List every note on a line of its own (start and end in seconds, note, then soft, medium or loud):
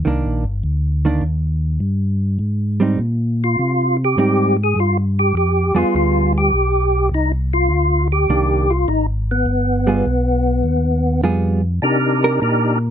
0.05 0.25 C2 medium
0.05 0.42 D#3 medium
0.05 0.43 A#3 medium
0.05 0.43 D4 medium
0.26 0.45 A#1 medium
0.44 0.63 G1 medium
0.63 1.21 D2 medium
1.05 1.22 D#3 medium
1.05 1.22 A#3 medium
1.05 1.22 D4 medium
1.21 1.79 D#2 medium
1.80 2.38 G2 medium
2.39 2.97 G#2 medium
2.80 2.97 G3 medium
2.80 2.98 C4 medium
2.80 2.98 D#4 medium
2.99 3.56 A#2 medium
3.44 3.97 F4 medium
3.59 4.16 C3 medium
4.05 4.57 G4 loud
4.17 4.74 G#2 medium
4.17 4.54 G3 medium
4.17 4.54 C4 medium
4.17 4.55 D#4 medium
4.64 4.80 G#4 medium
4.76 5.33 G2 medium
4.80 4.97 F4 medium
5.19 5.35 G4 medium
5.34 5.72 F2 medium
5.34 5.78 G4 medium
5.75 5.84 F2 soft
5.75 6.49 G3 medium
5.75 6.49 B3 medium
5.75 6.49 F4 medium
5.75 5.95 F4 medium
5.75 6.49 G#4 medium
5.94 6.51 D2 medium
5.94 6.33 F4 medium
6.38 7.09 G4 medium
6.52 7.10 B1 medium
7.11 7.69 C2 medium
7.11 7.32 D#4 medium
7.53 8.08 F4 medium
7.69 8.27 D2 medium
8.12 8.72 G4 medium
8.28 8.86 C2 medium
8.28 8.66 D#3 soft
8.28 8.66 A#3 soft
8.28 8.66 D4 medium
8.70 8.89 F4 medium
8.88 9.45 G#1 medium
8.88 9.06 D#4 medium
9.31 11.21 B3 medium
9.46 10.04 G1 medium
9.87 10.04 G3 medium
9.87 10.04 B3 medium
9.87 10.05 F4 medium
9.87 10.05 G#4 medium
10.06 10.63 B1 medium
10.64 11.22 D#2 medium
11.22 11.80 F2 medium
11.22 11.60 G3 soft
11.22 11.60 B3 medium
11.22 11.60 F4 medium
11.22 11.61 G#4 medium
11.82 12.40 C3 medium
11.82 12.40 D4 soft
11.82 12.40 D#4 soft
11.82 12.40 G4 medium
11.82 12.41 A#4 medium
12.24 12.90 A#4 medium
12.41 12.90 A#2 medium
12.41 12.78 D4 medium
12.41 12.78 D#4 soft
12.41 12.79 G4 soft
12.41 12.79 A#4 medium